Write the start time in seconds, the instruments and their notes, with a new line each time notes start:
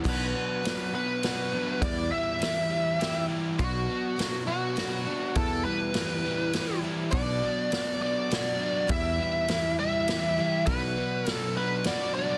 0.04 picked electric bass B1, twelve-string acoustic guitar B2 F#3 B3 D4 F#4, kick, crash
0.09 lead electric guitar B4
0.35 overdriven electric guitar B3
0.63 twelve-string acoustic guitar F#3 B3 D4 F#4, snare, ride
0.93 twelve-string acoustic guitar B3 D4 F#4, lead electric guitar B4
1.23 twelve-string acoustic guitar F#3 B3 D4 F#4, snare, ride
1.51 twelve-string acoustic guitar B3 D4 F#4
1.82 picked electric bass E2, twelve-string acoustic guitar E2 B2 E3 G3 E4 G4, lead electric guitar D5, kick, ride
2.12 overdriven electric guitar G3, lead electric guitar E5
2.39 twelve-string acoustic guitar E3 G3 E4 G4, ride
2.43 snare
2.70 overdriven electric guitar G3
3.00 twelve-string acoustic guitar E3 G3 E4 G4, snare, ride
3.29 overdriven electric guitar E4
3.58 picked electric bass B1, twelve-string acoustic guitar B2 F#3 B3 D4 F#4, lead electric guitar F#4, kick, ride
3.89 overdriven electric guitar B3
4.16 twelve-string acoustic guitar F#3 B3 D4 F#4, snare, ride
4.46 twelve-string acoustic guitar B3 D4 F#4, lead electric guitar F#4
4.76 twelve-string acoustic guitar F#3 B3 D4 F#4, snare, ride
5.05 twelve-string acoustic guitar B3 D4 F#4
5.35 twelve-string acoustic guitar E2 B2 E3 G3 E4 G4, picked electric bass E2, lead electric guitar A4, kick, ride
5.65 overdriven electric guitar G3, lead electric guitar B4
5.94 twelve-string acoustic guitar E3 G3 E4 G4, snare, ride
6.24 twelve-string acoustic guitar E3 G3 E4 G4
6.53 twelve-string acoustic guitar E3 G3 E4 G4, snare, ride
6.82 twelve-string acoustic guitar E3 G3 E4 G4
7.11 picked electric bass B1, twelve-string acoustic guitar B2 F#3 B3 D4 F#4, lead electric guitar D5, kick, ride
7.43 overdriven electric guitar B3
7.71 twelve-string acoustic guitar F#3 B3 D4 F#4, snare, ride
8.01 overdriven electric guitar B3, lead electric guitar D5
8.31 twelve-string acoustic guitar F#3 B3 D4 F#4, snare, ride
8.60 overdriven electric guitar D4
8.87 twelve-string acoustic guitar E2 B2 E3 G3 E4 G4, picked electric bass E2, kick, ride
8.91 lead electric guitar E5
9.18 overdriven electric guitar G3
9.48 twelve-string acoustic guitar E3 G3 E4 G4, snare, ride
9.79 twelve-string acoustic guitar E3 G3 E4 G4, lead electric guitar E5
10.07 twelve-string acoustic guitar E3 G3 E4 G4, snare, ride
10.38 twelve-string acoustic guitar E3 G3 E4 G4
10.66 picked electric bass B1, twelve-string acoustic guitar B2 F#3 B3 D4 F#4, lead electric guitar B4, kick, ride
10.98 overdriven electric guitar B3
11.25 twelve-string acoustic guitar F#3 B3 D4 F#4, snare, ride
11.32 lead electric guitar A4
11.57 overdriven electric guitar B3, lead electric guitar B4
11.84 twelve-string acoustic guitar F#3 B3 D4 F#4, lead electric guitar D5, snare, ride
12.15 overdriven electric guitar D4, lead electric guitar D5